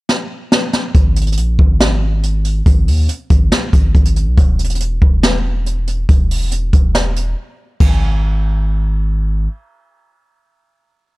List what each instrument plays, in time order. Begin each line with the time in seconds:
0.09 snare
0.52 snare
0.73 snare
0.95 808-style bass G#1, kick, closed hi-hat
1.16 closed hi-hat
1.21 closed hi-hat
1.27 closed hi-hat
1.32 closed hi-hat
1.37 808-style bass A#1, closed hi-hat
1.59 808-style bass G#1, kick
1.80 snare, closed hi-hat
2.23 closed hi-hat
2.45 closed hi-hat
2.66 808-style bass G#1, kick, closed hi-hat
2.87 808-style bass D#2, open hi-hat
3.09 closed hi-hat
3.30 808-style bass G#1, kick, closed hi-hat
3.52 snare, closed hi-hat
3.73 808-style bass G#1, kick, closed hi-hat
3.95 808-style bass G#1, kick, closed hi-hat
4.05 closed hi-hat
4.16 closed hi-hat
4.27 808-style bass B1
4.37 808-style bass E1, kick, closed hi-hat
4.59 closed hi-hat
4.64 closed hi-hat
4.70 closed hi-hat
4.75 closed hi-hat
4.80 closed hi-hat
5.02 808-style bass E1, kick
5.23 snare, closed hi-hat
5.66 closed hi-hat
5.87 closed hi-hat
6.09 808-style bass E1, kick, closed hi-hat
6.31 open hi-hat
6.52 closed hi-hat
6.73 808-style bass E1, kick, closed hi-hat
6.95 snare, closed hi-hat
7.16 closed hi-hat
7.80 808-style bass G#1, kick, crash